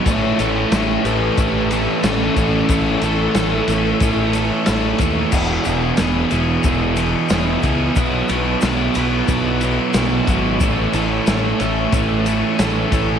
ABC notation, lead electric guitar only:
X:1
M:4/4
L:1/8
Q:1/4=91
K:Alyd
V:1 name="Lead electric guitar"
[ce] [ce] [ce] [=GB] [GB] [GB] [CA] [CA] | [CA] A4 z3 | z8 | z8 |
z8 |]